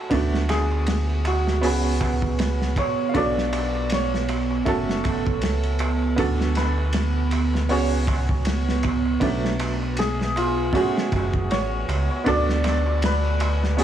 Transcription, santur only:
Already playing: F#4 A4
0.50 G#4
1.27 F#4
1.65 B4
2.78 C#5
3.09 F5
3.17 D5
3.93 C#5
4.69 A4
6.56 B4
7.70 C#5
9.99 G#4
10.37 F4
10.74 F#4
11.51 C#5
12.28 D5
13.05 B4
13.80 G#4

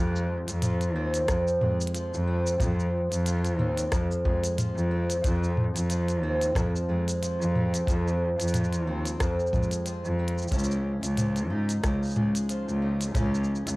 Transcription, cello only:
Already playing: F2
0.48 F2
0.95 D#2
1.28 F2
1.61 F2
2.13 F2
2.60 F2
3.12 F2
3.59 D#2
3.92 F2
4.25 F2
4.76 F2
5.24 F2
5.75 F2
6.23 D#2
6.55 F2
6.89 F2
7.40 F2
7.87 F2
8.39 F2
8.87 D#2
9.20 F2
9.53 F2
10.04 F2
10.51 C#2
11.03 C#2
11.50 G#2
11.84 C#2
12.16 C#2
12.68 C#2
13.15 C#2
13.67 C#2

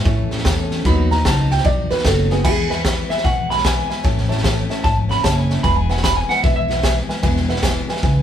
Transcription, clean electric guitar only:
2.45 G#4
2.70 B4
3.10 E5
3.24 F#5
3.50 B5
3.65 G#5
4.84 A5
5.11 B5
5.23 A5
5.37 G#5
5.63 B5
5.76 G#5
5.90 F#5
6.04 B5
6.17 G#5
6.29 F#5
6.43 E5
6.56 E5

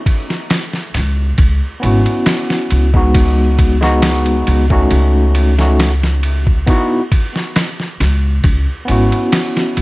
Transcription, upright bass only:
0.95 C#2
1.39 C#2
1.83 G#1
2.72 C#2
4.48 C#2
4.91 C#2
8.00 C#2
8.44 C#2
8.89 G#1
9.77 C#2

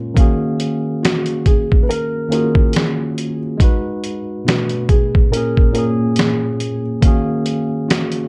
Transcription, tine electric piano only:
Already playing: A#2 G#3 C#4 F4 A#4
0.14 D#3 A#3 C#4 F5
0.20 F#4 G#4
2.28 D#3 A#3 C#4 F4
2.33 F#4 G#4
3.58 G#3 D#4
3.62 F#4 B4
4.45 B2 A3 D4
4.51 B4
5.31 A#2 A#3
5.35 C#4 G#4
5.72 A#2 A#3
5.76 C#4 G#4
7.01 D#3 A#3 C#4 F5
7.06 F#4 G#4

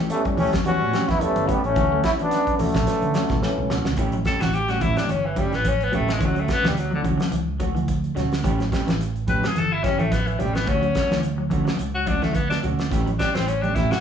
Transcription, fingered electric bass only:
0.53 E2
0.81 A2
1.09 E2
1.37 G1
1.64 A1
1.76 D2
2.75 A1
3.03 D3
3.30 A1
3.58 C#2
3.86 D2
3.97 A1
4.42 A1
4.82 A2
4.97 muted fingered electric bass stroke
5.09 G1
5.52 A1
5.93 A1
6.21 D2
6.63 D2
7.04 D3
7.20 muted fingered electric bass stroke
7.31 C#2
7.75 D2
8.15 D2
8.44 A1
8.87 A1
9.28 A2
9.44 muted fingered electric bass stroke
9.56 G1
10.00 A1
10.40 A1
10.67 D2
11.11 D2
11.51 D3
11.67 muted fingered electric bass stroke
11.79 C#2
12.23 D2
12.63 D2
12.92 A1
13.35 A1
13.76 A2
13.91 muted fingered electric bass stroke

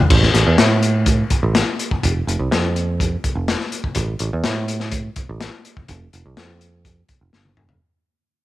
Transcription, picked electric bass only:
0.10 A1
0.34 A1
0.47 E2
0.59 A2
1.43 A1
2.03 F1
2.27 F1
2.39 C2
2.51 F2
3.35 F1
3.96 A1
4.20 A1
4.33 E2
4.45 A2
5.29 A1
5.89 F1
6.13 F1
6.26 C2
6.37 F2
7.21 F1
7.33 G1
7.57 F1

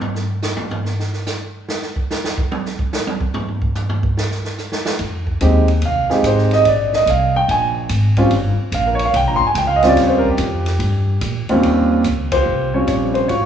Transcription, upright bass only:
4.99 F2
5.41 D#2
5.83 C2
6.09 muted upright bass stroke
6.23 G#1
6.65 A#1
7.06 C2
7.48 A#1
7.89 G#1
8.30 G1
8.57 muted upright bass stroke
8.72 A#1
9.14 C2
9.27 A#1
9.41 G1
9.55 C#2
9.95 D#2
10.37 F2
10.79 G2
11.21 A#2
11.49 muted upright bass stroke
11.63 D#2
12.05 C#2
12.46 C2
12.87 A#1
13.28 G#1

